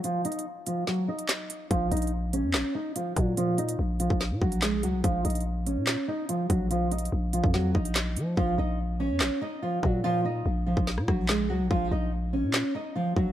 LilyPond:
<<
  \new Staff \with { instrumentName = "Nylon-string guitar" } { \time 4/4 \key bes \minor \tempo 4 = 144 <f f'>8 <ees' ees''>8 r8 <f f'>8 <ges ges'>8 <ees' ees''>4. | <f f'>8 <ees' ees''>8 r8 <des' des''>4 <ees' ees''>8 <f f'>8 <ges ges'>8 | <f f'>8 <ees' ees''>8 r8 <f f'>8 r8 <ges ges'>8 <aes aes'>8 <ges ges'>8 | <f f'>8 <ees' ees''>8 r8 <des' des''>4 <ees' ees''>8 <f f'>8 <ges ges'>8 |
<f f'>8 <ees' ees''>8 r8 <f f'>8 <ges ges'>8 <ees' ees''>4. | <f f'>8 <ees' ees''>8 r8 <des' des''>4 <ees' ees''>8 <f f'>8 <ges ges'>8 | <f f'>8 <ees' ees''>8 r8 <f f'>8 r8 <ges ges'>8 <aes aes'>8 <ges ges'>8 | <f f'>8 <ees' ees''>8 r8 <des' des''>4 <ees' ees''>8 <f f'>8 <ges ges'>8 | }
  \new Staff \with { instrumentName = "808-style bass" } { \clef bass \time 4/4 \key bes \minor r1 | bes,,8 bes,,4~ bes,,16 f,16 bes,,16 r4 r16 bes,8~ | bes,4 bes,,8. bes,,8 bes,16 bes,,4 des,16 bes,,16 | bes,,8 bes,,4~ bes,,16 bes,8 r4 r16 bes,,8~ |
bes,,4 bes,,8. f,8. bes,,4 f8 | bes,,8 bes,,4~ bes,,16 f,16 bes,,16 r4 r16 bes,8~ | bes,4 bes,,8. bes,,8 bes,16 bes,,4 des,16 bes,,16 | bes,,8 bes,,4~ bes,,16 bes,8 r4 r16 bes,,8 | }
  \new DrumStaff \with { instrumentName = "Drums" } \drummode { \time 4/4 \tuplet 3/2 { hh16 r16 r16 hh16 hh16 hh16 } r8 hh8 sn8. hh16 <hc hh sn>8 hh8 | <hh bd>8 hh32 hh32 hh32 hh32 r8 hh8 <hc sn>4 hh8 <hh bd>8 | hh8 hh16 hh16 r8 hh16 bd16 sn8 bd16 hh16 <hc hh sn>8 hh8 | <hh bd>8 hh32 hh32 hh32 hh32 r8 hh8 <hc sn>4 hh8 <hh bd>8 |
\tuplet 3/2 { hh16 r16 r16 hh16 hh16 hh16 } r8 hh16 bd16 sn8 bd16 hh16 <hc hh sn>8 hh8 | bd4 r4 <hc sn>4 r8 bd8 | r4 r8. bd16 sn16 ss16 <bd ss>8 <hc sn>4 | bd4 r4 <hc sn>4 r8 bd8 | }
>>